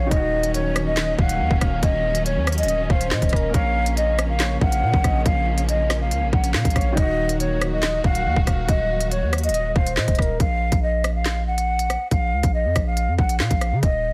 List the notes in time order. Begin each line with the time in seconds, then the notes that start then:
Already playing: A#1 C#4 C#5
0.06 D#3 D#4
0.11 D#1 D#3 F#3 A#3 D#5, kick, closed hi-hat
0.16 F#4
0.43 closed hi-hat
0.54 C#5, closed hi-hat
0.76 cross-stick, closed hi-hat
0.86 D#5
0.97 D#5, snare, clap, closed hi-hat
1.19 D#1 F5 F#5, kick
1.29 closed hi-hat
1.40 D#2
1.51 D#1, kick
1.61 D#1 F5, kick, cross-stick, closed hi-hat
1.83 D#1 D#5, kick, closed hi-hat
2.15 closed hi-hat
2.26 C#5, closed hi-hat
2.36 D#2
2.47 cross-stick, closed hi-hat
2.52 closed hi-hat
2.58 D#5, closed hi-hat
2.63 D#1, closed hi-hat
2.68 D#5, closed hi-hat
2.90 D#1 C5 F5, kick
3.01 closed hi-hat
3.11 A#2 D#5, snare, clap
3.22 D#1, kick, closed hi-hat
3.29 D#1 A#4, kick, cross-stick, closed hi-hat
3.36 closed hi-hat
3.49 A#3 A#4
3.54 A#1 C#3 F3 A#3 C#5 F5, kick, closed hi-hat
3.86 closed hi-hat
3.97 D#5, closed hi-hat
4.19 cross-stick, closed hi-hat
4.29 F5
4.40 C#5, snare, clap, closed hi-hat
4.61 A#1 F5 F#5, kick
4.72 closed hi-hat
4.83 A#2
4.94 A#1, kick
5.04 A#1 D#5, kick, cross-stick, closed hi-hat
5.26 A#1 F5, kick, closed hi-hat
5.58 closed hi-hat
5.69 D#5, closed hi-hat
5.90 cross-stick, snare, closed hi-hat
6.01 F5
6.11 C#2, closed hi-hat
6.22 A#1
6.33 A#1 F#5, kick
6.44 closed hi-hat
6.54 A#2 F5, snare, clap
6.65 A#1, kick, closed hi-hat
6.70 closed hi-hat
6.76 A#1 C#5, kick, cross-stick, closed hi-hat
6.81 closed hi-hat
6.92 D#3 D#4
6.97 D#1 D#3 F#3 F#4 D#5, kick, closed hi-hat
7.02 F#4
7.29 closed hi-hat
7.40 C#5, closed hi-hat
7.61 cross-stick, closed hi-hat
7.72 D#5
7.83 D#5, snare, clap, closed hi-hat
8.04 D#1 F5 F#5, kick
8.15 closed hi-hat
8.26 D#2
8.36 D#1, kick
8.47 D#1 F5, kick, cross-stick, closed hi-hat
8.69 D#1 D#5, kick, closed hi-hat
9.01 closed hi-hat
9.11 C#5, closed hi-hat
9.22 D#2
9.33 cross-stick, closed hi-hat
9.38 closed hi-hat
9.44 D#5, closed hi-hat
9.49 D#1, closed hi-hat
9.54 D#5, closed hi-hat
9.76 D#1 C5 F5, kick
9.86 closed hi-hat
9.97 A#2 D#5, snare, clap
10.08 D#1, kick, closed hi-hat
10.15 D#1 A#4, kick, cross-stick, closed hi-hat
10.22 closed hi-hat
10.40 A#1 F5, kick, closed hi-hat
10.72 A#1, kick, closed hi-hat
10.83 D#5
11.04 cross-stick, closed hi-hat
11.15 F5
11.25 snare, clap, closed hi-hat
11.47 F#5
11.58 closed hi-hat
11.79 closed hi-hat
11.90 cross-stick, closed hi-hat
12.11 A#1 F5, kick, closed hi-hat
12.33 C#2
12.43 A#1, kick, closed hi-hat
12.54 D#5
12.65 F2
12.76 A#1, kick, cross-stick, closed hi-hat
12.86 F5
12.97 closed hi-hat
13.08 F2
13.18 A#1 F#5, kick
13.29 closed hi-hat
13.40 A#2 F5, snare, clap
13.51 A#1, kick, closed hi-hat
13.61 cross-stick, closed hi-hat
13.72 C#3
13.83 D#1 D#5, kick, closed hi-hat